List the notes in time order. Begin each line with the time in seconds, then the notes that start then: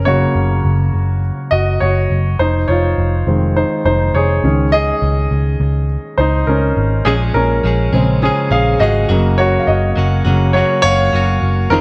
Already playing: F#1 C#4 A#4
0.05 C#3 F#3 A#3 F#4 C#5
0.35 F#1
0.65 F#1
0.94 F#1
1.51 F#1 F#4 D#5
1.80 F#1 F#4 C#5
2.10 F#1
2.39 F1 D#4 C5
2.68 F1 F4 C#5
2.98 F1
3.27 F1 D#3 G#3 C4
3.56 D#4 C5
3.85 F1 D#4 C5
4.14 F1 G#4 C#5
4.44 C#2 D#3 G#3 C#4
4.72 G#4 D#5
5.02 C#2
5.31 C#2
5.60 C#2
6.18 C#2 D#4 C5
6.47 C#2 C#4 A#4
6.77 G#1
7.05 A#1 A#2 F3 G#3 C#4 G#4
7.34 A#1 C#4 A#4
7.64 A#1 F3 G#3 C#4 G#4
7.93 A#1 C#3 G#3 C4 C#4 G#4
8.22 F3 G#3 C#4 G#4
8.51 A#1 G#3 C#4 G#4 F5
8.80 G#1 F3 G#3 C#4 F#4 G#4 D#5
9.09 F#1 F#2 C#3 F#3 A#3 C#4 F#4
9.38 F#4 C#5
9.60 F5
9.67 F#1 F#4 D#5
9.96 F#1 F#3 A#3 C#4 F#4
10.25 F#1 C#3 F#3 A#3 C#4 F#4
10.53 F#3 A#3 C#4 F#4 C#5
10.57 F#4
10.82 F#1 F#3 A#3 C#4 F#4 C#5 F5
11.13 F#1 F#3 A#3 C#4 F#4
11.42 F#1
11.70 F1 F2 C3 D#3 G#3 C4 D#4 F4 A#4